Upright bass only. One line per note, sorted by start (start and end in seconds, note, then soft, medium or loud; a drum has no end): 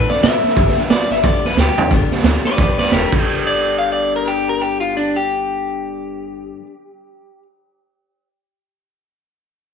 0.10 muted upright bass stroke medium
0.23 0.37 C3 medium
0.43 muted upright bass stroke medium
0.57 0.70 G1 loud
0.77 muted upright bass stroke medium
0.89 1.03 B1 medium
1.10 1.19 G1 loud
1.24 1.38 B1 medium
1.45 1.53 G1 medium
1.57 1.71 D2 loud
1.77 muted upright bass stroke medium
1.90 2.03 G1 loud
2.11 muted upright bass stroke medium
2.23 2.36 D2 medium
2.45 muted upright bass stroke medium
2.58 2.71 B1 loud
2.79 muted upright bass stroke medium
2.92 3.05 E1 medium
3.12 6.49 G1 medium